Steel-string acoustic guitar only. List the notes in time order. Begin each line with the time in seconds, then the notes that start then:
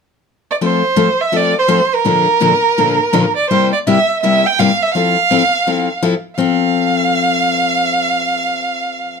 0.61 F3 A3 C4 F4 A4
0.96 F3 A3 C4 F4 A4
1.32 F3 A3 C4 F4 A4
1.68 F3 A3 C4 F4 A4
2.05 A#2 D3 F3 A#3 D4 A4
2.40 A#2 D3 F3 A#3 D4 A4
2.78 A#2 D3 F3 A#3 D4 A4
3.13 A#2 D3 F3 A#3 D4 A4
3.51 C3 G3 A#3 E4 G4
3.87 C3 G3 A#3 E4 G4
4.23 C3 G3 A#3 E4 G4
4.59 C3 G3 A#3 E4 G4
4.95 F3 C4 E4 A4
5.31 F3 C4 E4 A4
5.67 F3 C4 E4 A4
6.03 F3 C4 E4 A4
6.38 F3 C4 A4